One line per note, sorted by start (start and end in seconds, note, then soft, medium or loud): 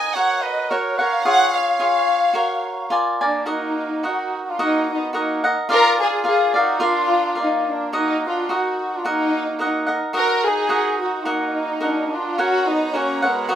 0.00 0.15 D#4 medium
0.00 0.15 A#4 soft
0.00 0.16 D#5 medium
0.00 0.16 D#5 loud
0.00 0.16 F#5 medium
0.00 0.12 G#5 loud
0.14 0.70 F#4 medium
0.14 0.70 A#4 medium
0.14 0.44 C#5 medium
0.14 0.71 C#5 medium
0.14 0.44 F#5 medium
0.14 0.71 F#5 medium
0.43 0.71 B4 medium
0.43 0.70 D#5 medium
0.70 1.00 F#4 medium
0.70 1.00 A#4 medium
0.70 0.99 A#4 medium
0.70 1.00 C#5 medium
0.70 0.98 C#5 soft
0.70 0.97 F#5 medium
0.98 1.25 A#4 soft
0.98 1.25 C#5 medium
0.98 1.24 C#5 soft
0.98 1.24 F5 loud
0.98 1.25 F#5 medium
1.23 1.78 F4 medium
1.23 1.79 G#4 medium
1.23 1.52 C#5 medium
1.23 1.79 C#5 medium
1.23 1.79 F5 medium
1.23 1.53 F#5 loud
1.52 2.90 C#5 medium
1.52 2.91 F5 loud
1.79 2.33 F4 medium
1.79 2.34 G#4 medium
1.79 2.34 C#5 medium
1.79 2.35 F5 medium
2.33 2.90 F#4 medium
2.33 2.90 A#4 medium
2.33 2.91 C#5 medium
2.90 3.21 F4 medium
2.90 3.21 A#4 medium
2.90 3.20 D5 medium
2.90 3.20 G#5 medium
3.21 3.49 A#3 medium
3.21 3.47 D4 medium
3.21 3.45 A#4 soft
3.21 3.46 D5 medium
3.21 3.46 G#5 soft
3.46 4.07 A#3 medium
3.46 4.05 D#4 medium
3.46 4.02 F#4 medium
3.46 4.03 A#4 medium
3.46 4.03 D#5 medium
3.46 4.03 F#5 medium
4.03 4.45 D#4 medium
4.03 4.58 F#4 soft
4.03 4.43 F#4 medium
4.03 4.59 A#4 medium
4.03 4.58 D#5 medium
4.03 4.59 F#5 medium
4.44 4.51 D#4 medium
4.44 4.47 F#4 medium
4.50 4.61 D4 medium
4.50 4.61 F4 medium
4.59 5.12 F#4 medium
4.59 5.14 A#4 medium
4.59 5.13 D#5 medium
4.59 5.14 F#5 medium
4.63 4.89 A#3 medium
4.63 4.89 D#4 medium
4.92 5.16 B3 medium
4.92 5.15 D#4 medium
5.13 5.55 D#4 medium
5.13 5.43 F#4 soft
5.13 5.44 A#4 medium
5.13 5.43 D#5 medium
5.13 5.43 F#5 medium
5.19 5.56 A#3 medium
5.44 5.68 A#4 soft
5.44 5.70 D#5 medium
5.44 5.69 F#5 medium
5.69 6.22 F4 medium
5.69 6.24 A#4 medium
5.69 5.98 A#4 loud
5.69 6.24 D5 medium
5.69 6.24 F5 medium
5.73 6.01 F4 medium
6.01 6.26 F4 medium
6.01 6.26 G#4 medium
6.24 6.54 F4 medium
6.24 6.54 A#4 medium
6.24 6.53 D5 medium
6.24 6.54 F5 medium
6.28 6.60 F4 medium
6.28 6.54 G#4 medium
6.54 6.79 A#4 soft
6.54 6.80 D5 medium
6.54 6.79 F5 medium
6.58 6.85 D#4 medium
6.58 6.83 F#4 medium
6.80 7.42 D4 medium
6.80 7.34 F4 medium
6.80 7.35 A#4 medium
6.80 7.36 D5 medium
6.80 7.35 F5 medium
6.85 7.39 F4 loud
7.35 7.93 F4 soft
7.35 7.92 A#4 medium
7.35 7.93 D5 soft
7.35 7.93 F5 soft
7.40 7.69 A#3 medium
7.40 7.69 D#4 medium
7.69 7.95 A#3 medium
7.69 7.95 D4 medium
7.93 8.29 A#3 medium
7.93 8.49 F#4 soft
7.93 8.49 A#4 medium
7.93 8.49 D#5 medium
7.93 8.51 F#5 medium
7.98 8.24 D#4 loud
8.27 8.56 D4 medium
8.27 8.52 F4 medium
8.49 9.04 F#4 medium
8.49 9.05 A#4 soft
8.49 9.04 D#5 medium
8.49 9.05 F#5 soft
8.54 8.97 D#4 medium
8.54 8.94 F#4 medium
8.95 9.07 D4 medium
8.95 9.07 F4 medium
9.05 9.58 F#4 medium
9.05 9.59 A#4 medium
9.05 9.59 D#5 medium
9.05 9.61 F#5 medium
9.09 9.57 A#3 medium
9.09 9.58 D#4 loud
9.59 10.00 A#3 medium
9.59 10.00 D#4 medium
9.59 9.88 F#4 soft
9.59 9.88 A#4 medium
9.59 9.87 D#5 medium
9.59 9.85 F#5 medium
9.87 10.12 A#4 soft
9.87 10.13 D#5 medium
9.87 10.13 F#5 soft
10.13 10.69 F#4 medium
10.13 10.47 F#4 medium
10.13 10.69 A#4 medium
10.13 10.43 A#4 loud
10.13 10.69 D#5 medium
10.13 10.70 F#5 medium
10.45 11.02 D#4 loud
10.45 10.99 G#4 medium
10.69 11.25 F#4 medium
10.69 11.25 A#4 medium
10.69 11.25 D#5 medium
10.69 11.26 F#5 medium
11.02 11.28 D#4 medium
11.02 11.27 F#4 medium
11.25 11.80 A#3 medium
11.25 12.12 D#4 medium
11.25 11.80 F#4 medium
11.25 11.80 A#4 medium
11.25 11.80 D#5 medium
11.25 11.82 F#5 medium
11.80 12.12 A#3 medium
11.80 12.10 D4 medium
11.80 12.38 F#4 soft
11.80 12.38 A#4 soft
11.80 12.38 D#5 medium
11.80 12.39 F#5 soft
12.10 12.40 D4 medium
12.10 12.39 F4 medium
12.38 12.69 C#4 medium
12.38 12.93 F#4 medium
12.38 13.49 F#4 medium
12.38 12.69 F#4 loud
12.38 12.93 A#4 medium
12.38 13.49 C#5 medium
12.38 12.94 C#5 medium
12.38 12.95 F#5 medium
12.38 13.50 A#5 medium
12.68 12.95 B3 medium
12.68 12.94 D#4 medium
12.93 13.26 A#3 medium
12.93 13.24 C#4 medium
12.93 13.23 F#4 soft
12.93 13.23 A#4 soft
12.93 13.22 C#5 medium
12.93 13.21 F#5 medium
13.22 13.52 G#3 medium
13.22 13.48 A#4 soft
13.22 13.49 C#5 soft
13.22 13.48 F#5 medium
13.26 13.51 B3 medium
13.49 13.55 F#3 medium
13.49 13.55 D#4 medium
13.49 13.55 F#4 medium
13.49 13.55 A#4 medium
13.49 13.55 D#5 medium
13.49 13.55 F#5 medium